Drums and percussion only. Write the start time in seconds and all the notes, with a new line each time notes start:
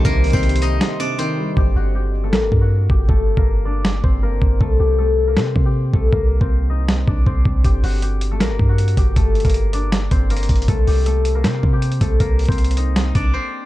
0.05 kick, closed hi-hat
0.24 closed hi-hat, open hi-hat
0.30 kick, closed hi-hat
0.37 closed hi-hat
0.43 closed hi-hat
0.49 closed hi-hat
0.56 closed hi-hat
0.62 closed hi-hat
0.81 snare, closed hi-hat
1.00 closed hi-hat
1.19 closed hi-hat
1.57 kick
2.33 snare
2.52 kick
2.90 kick
3.09 kick
3.37 kick
3.85 snare
4.04 kick
4.42 kick
4.61 kick
5.37 snare
5.56 kick
5.94 kick
6.13 kick
6.41 kick
6.89 snare
7.08 kick
7.26 kick
7.45 kick
7.64 kick, closed hi-hat
7.84 open hi-hat
8.02 closed hi-hat
8.21 closed hi-hat
8.40 snare, closed hi-hat
8.59 kick
8.78 closed hi-hat
8.88 closed hi-hat
8.97 kick, closed hi-hat
9.16 kick, closed hi-hat
9.35 closed hi-hat
9.40 closed hi-hat
9.45 kick, closed hi-hat
9.50 closed hi-hat
9.54 closed hi-hat
9.73 closed hi-hat
9.92 snare, closed hi-hat
10.11 kick, closed hi-hat
10.30 closed hi-hat
10.37 closed hi-hat
10.43 closed hi-hat
10.49 kick, closed hi-hat
10.56 closed hi-hat
10.62 closed hi-hat
10.68 kick, closed hi-hat
10.87 open hi-hat
11.06 closed hi-hat
11.25 closed hi-hat
11.44 snare, closed hi-hat
11.63 kick
11.82 closed hi-hat
11.92 closed hi-hat
12.01 kick, closed hi-hat
12.20 kick, closed hi-hat
12.39 closed hi-hat, open hi-hat
12.45 kick, closed hi-hat
12.52 closed hi-hat
12.58 closed hi-hat
12.64 closed hi-hat
12.71 closed hi-hat
12.77 closed hi-hat
12.96 snare, closed hi-hat
13.15 kick, closed hi-hat